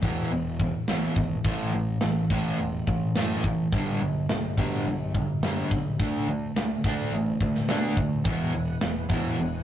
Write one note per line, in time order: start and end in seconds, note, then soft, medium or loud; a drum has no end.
0.02 0.29 E2 medium
0.02 0.22 E2 medium
0.02 0.30 B2 medium
0.02 0.30 E3 medium
0.02 kick medium
0.30 0.69 E1 medium
0.30 0.57 E2 medium
0.30 0.57 B2 medium
0.30 open hi-hat soft
0.60 0.86 E2 medium
0.60 0.86 B2 medium
0.60 kick medium
0.88 1.08 B1 medium
0.88 1.16 E2 medium
0.88 1.16 B2 medium
0.88 1.16 E3 medium
0.88 snare medium
0.88 open hi-hat soft
1.16 1.36 G#1 medium
1.16 1.43 E2 medium
1.16 1.43 B2 medium
1.16 kick medium
1.44 1.64 A1 medium
1.44 1.72 A2 medium
1.44 1.72 E3 medium
1.44 1.72 A3 medium
1.44 kick loud
1.44 open hi-hat medium
1.74 1.93 A1 medium
1.74 1.99 A2 medium
1.74 2.00 E3 medium
2.01 2.22 A1 medium
2.01 2.27 A2 medium
2.01 2.28 E3 medium
2.01 snare loud
2.01 open hi-hat medium
2.30 2.50 A1 medium
2.30 2.57 A2 medium
2.30 2.58 E3 medium
2.30 2.58 A3 medium
2.30 kick medium
2.59 2.79 E1 medium
2.59 2.85 A2 medium
2.59 2.85 E3 medium
2.59 open hi-hat soft
2.87 3.06 A1 medium
2.87 3.13 A2 medium
2.87 3.13 E3 medium
2.87 kick medium
3.15 3.36 F#2 medium
3.15 3.43 A2 medium
3.15 3.43 E3 medium
3.15 3.44 A3 medium
3.15 snare medium
3.15 open hi-hat soft
3.44 3.63 A1 medium
3.44 3.71 A2 medium
3.44 3.71 E3 medium
3.44 kick medium
3.72 3.92 B1 medium
3.72 4.00 G2 medium
3.72 4.00 D3 medium
3.72 4.00 G3 medium
3.72 kick loud
3.72 open hi-hat medium
4.01 4.21 B1 medium
4.01 4.27 G2 medium
4.01 4.27 D3 medium
4.29 4.50 B1 medium
4.29 4.55 G2 medium
4.29 4.55 D3 medium
4.29 snare loud
4.29 open hi-hat medium
4.57 4.84 G2 medium
4.57 4.77 B2 medium
4.57 4.85 D3 medium
4.57 4.85 G3 medium
4.57 kick medium
4.86 5.24 B1 loud
4.86 5.13 G2 medium
4.86 5.13 D3 medium
4.86 open hi-hat medium
5.15 5.41 G2 medium
5.15 5.41 D3 medium
5.15 kick medium
5.43 5.62 F#2 medium
5.43 5.70 G2 medium
5.43 5.70 D3 medium
5.43 5.71 G3 medium
5.43 snare medium
5.43 open hi-hat soft
5.71 5.90 B1 medium
5.71 5.97 G2 medium
5.71 5.98 D3 medium
5.71 kick medium
6.00 6.19 D2 medium
6.00 6.27 D3 medium
6.00 6.27 A3 medium
6.00 6.27 D4 medium
6.00 kick loud
6.00 open hi-hat medium
6.27 6.47 D2 medium
6.27 6.54 D3 medium
6.27 6.54 A3 medium
6.56 6.75 D2 medium
6.56 6.82 D3 medium
6.56 6.82 A3 medium
6.56 snare loud
6.56 open hi-hat medium
6.84 7.03 D2 medium
6.84 7.12 D3 medium
6.84 7.12 A3 medium
6.84 7.12 D4 loud
6.84 kick medium
7.12 7.31 A1 medium
7.12 7.39 D3 medium
7.12 7.39 A3 medium
7.12 open hi-hat soft
7.41 7.60 D2 medium
7.41 7.67 D3 medium
7.41 7.67 A3 medium
7.41 kick medium
7.55 snare soft
7.68 7.88 B2 medium
7.68 7.96 D3 medium
7.68 7.97 A3 medium
7.68 7.96 D4 medium
7.68 snare loud
7.68 open hi-hat soft
7.97 8.16 D2 medium
7.97 8.23 D3 medium
7.97 8.23 A3 medium
7.97 kick medium
8.25 8.44 E1 medium
8.25 8.52 E2 medium
8.25 8.53 B2 medium
8.25 8.53 E3 medium
8.25 9.63 B4 medium
8.25 9.63 F#5 medium
8.25 kick loud
8.25 open hi-hat medium
8.29 9.63 E4 medium
8.53 8.73 E1 medium
8.53 8.79 E2 medium
8.53 8.79 B2 medium
8.81 9.01 E1 medium
8.81 9.07 E2 medium
8.81 9.07 B2 medium
8.81 snare loud
8.81 open hi-hat medium
9.09 9.29 E2 medium
9.09 9.37 E2 medium
9.09 9.37 B2 medium
9.09 9.38 E3 medium
9.09 kick medium
9.38 9.63 E1 medium
9.38 9.63 E2 medium
9.38 9.63 B2 medium
9.38 open hi-hat medium